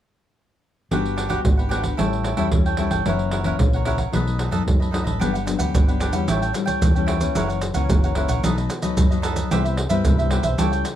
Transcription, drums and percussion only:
0.91 pandeiro, surdo
1.06 pandeiro
1.18 pandeiro
1.30 pandeiro, surdo
1.45 pandeiro, surdo
1.59 pandeiro
1.71 pandeiro, surdo
1.84 pandeiro, surdo
1.99 pandeiro, surdo
2.13 pandeiro
2.24 pandeiro
2.37 pandeiro, surdo
2.52 pandeiro, surdo
2.66 pandeiro
2.77 pandeiro
2.91 pandeiro, surdo
3.06 pandeiro, surdo
3.19 pandeiro
3.31 pandeiro
3.44 pandeiro, surdo
3.59 pandeiro, surdo
3.73 pandeiro
3.85 pandeiro, surdo
3.98 pandeiro, surdo
4.13 pandeiro, surdo
4.27 pandeiro
4.39 pandeiro
4.52 pandeiro, surdo
4.68 pandeiro, surdo
4.82 pandeiro
4.94 pandeiro
5.07 pandeiro, surdo
5.21 pandeiro, maracas, surdo
5.35 pandeiro, maracas
5.47 pandeiro, maracas
5.59 pandeiro, maracas, surdo
5.75 pandeiro, maracas, surdo
5.88 pandeiro, maracas
6.00 pandeiro, maracas
6.13 pandeiro, maracas, surdo
6.28 pandeiro, maracas, surdo
6.43 pandeiro, maracas
6.54 pandeiro, maracas
6.67 pandeiro, maracas, surdo
6.82 pandeiro, maracas, surdo
6.96 pandeiro, maracas
7.08 pandeiro
7.21 pandeiro, maracas, surdo
7.35 pandeiro, maracas, surdo
7.50 pandeiro, maracas
7.62 pandeiro, maracas
7.74 pandeiro, maracas, surdo
7.90 pandeiro, maracas, surdo
8.04 pandeiro, maracas
8.15 pandeiro, surdo
8.29 pandeiro, maracas, surdo
8.44 pandeiro, maracas, surdo
8.58 pandeiro, maracas
8.70 pandeiro, maracas
8.82 pandeiro, maracas, surdo
8.97 pandeiro, maracas, surdo
9.12 pandeiro, maracas
9.23 pandeiro, maracas
9.36 pandeiro, maracas, surdo
9.51 pandeiro, maracas, surdo
9.65 pandeiro, maracas
9.77 pandeiro
9.90 pandeiro, maracas, surdo
10.05 pandeiro, maracas, surdo
10.19 pandeiro, maracas
10.31 pandeiro
10.43 pandeiro, maracas, surdo
10.58 pandeiro, maracas, surdo
10.73 pandeiro, maracas
10.85 pandeiro, maracas

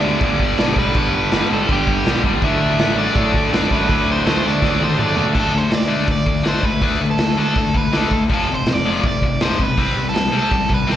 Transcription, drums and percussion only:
0.21 kick, crash
0.40 kick
0.58 snare, crash
0.76 kick
0.94 kick, crash
1.31 snare, crash
1.69 kick, crash
1.87 kick
2.06 snare, crash
2.24 kick
2.42 kick, crash
2.79 snare, crash
3.16 kick, crash
3.34 kick
3.53 snare, crash
3.71 kick
3.89 kick, crash
4.26 snare, crash
4.62 kick, snare
4.81 high tom
4.99 mid tom
5.17 floor tom
5.35 kick, crash
5.71 snare, open hi-hat
6.08 kick, open hi-hat
6.26 kick
6.45 snare, open hi-hat
6.63 kick
6.82 kick, open hi-hat
7.18 snare, open hi-hat
7.56 kick, open hi-hat
7.75 kick
7.92 snare, open hi-hat
8.11 kick
8.29 kick, open hi-hat
8.66 snare, open hi-hat
9.03 kick, open hi-hat
9.22 kick
9.40 snare, open hi-hat
9.59 kick
9.78 kick, open hi-hat
10.15 snare, open hi-hat
10.51 kick, open hi-hat
10.70 kick
10.89 snare

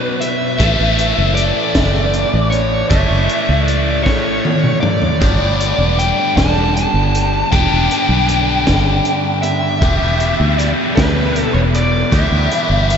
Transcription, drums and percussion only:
0.21 closed hi-hat
0.60 kick, closed hi-hat
0.99 closed hi-hat
1.37 closed hi-hat
1.75 kick, snare, closed hi-hat
2.14 closed hi-hat
2.52 closed hi-hat
2.90 kick, closed hi-hat
3.29 closed hi-hat
3.68 closed hi-hat
4.06 kick, snare
4.45 high tom
4.64 mid tom
4.83 mid tom
5.02 floor tom
5.22 kick, closed hi-hat
5.61 closed hi-hat
5.99 closed hi-hat
6.37 kick, snare, closed hi-hat
6.77 closed hi-hat
7.15 closed hi-hat
7.53 kick, closed hi-hat
7.91 closed hi-hat
8.29 closed hi-hat
8.67 kick, snare, closed hi-hat
9.05 closed hi-hat
9.43 closed hi-hat
9.82 kick, closed hi-hat
10.20 closed hi-hat
10.59 closed hi-hat
10.97 kick, snare, closed hi-hat
11.36 closed hi-hat
11.75 closed hi-hat
12.12 kick, closed hi-hat
12.52 closed hi-hat
12.90 closed hi-hat

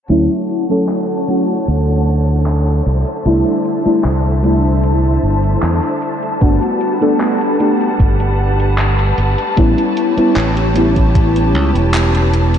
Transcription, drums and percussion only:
0.10 closed hi-hat
0.30 closed hi-hat
0.49 closed hi-hat
0.70 closed hi-hat
0.89 clap, closed hi-hat
1.09 closed hi-hat
1.28 closed hi-hat
1.49 closed hi-hat
1.68 closed hi-hat
1.88 closed hi-hat
2.28 closed hi-hat
2.46 clap, closed hi-hat
2.67 closed hi-hat
2.86 closed hi-hat
3.07 closed hi-hat
3.26 closed hi-hat
3.46 closed hi-hat
3.65 closed hi-hat
3.86 closed hi-hat
4.04 clap, closed hi-hat
4.25 closed hi-hat
4.44 closed hi-hat
4.65 closed hi-hat
4.84 closed hi-hat
5.04 closed hi-hat
5.44 closed hi-hat
5.63 clap, closed hi-hat
5.83 closed hi-hat
6.02 closed hi-hat
6.23 closed hi-hat
6.41 kick, closed hi-hat
6.62 closed hi-hat
6.81 closed hi-hat
7.02 closed hi-hat
7.20 clap, closed hi-hat
7.41 closed hi-hat
7.60 closed hi-hat
7.81 closed hi-hat
8.00 kick, closed hi-hat
8.20 closed hi-hat
8.60 closed hi-hat
8.78 clap, closed hi-hat
8.99 closed hi-hat
9.18 closed hi-hat
9.38 closed hi-hat
9.57 kick, closed hi-hat
9.78 closed hi-hat
9.97 closed hi-hat
10.18 closed hi-hat
10.36 clap, closed hi-hat
10.57 closed hi-hat
10.76 closed hi-hat
10.96 kick, closed hi-hat
11.15 kick, closed hi-hat
11.36 closed hi-hat
11.76 closed hi-hat
11.94 clap, closed hi-hat
12.15 closed hi-hat
12.34 closed hi-hat
12.54 closed hi-hat

